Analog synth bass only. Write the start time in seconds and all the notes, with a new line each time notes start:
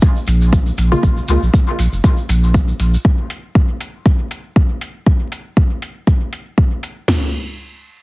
0.27 A#1
0.78 A#1
1.03 A#1
1.28 C#2
1.42 A#1
1.79 A#1
1.93 F1
2.29 A#1
2.80 A#1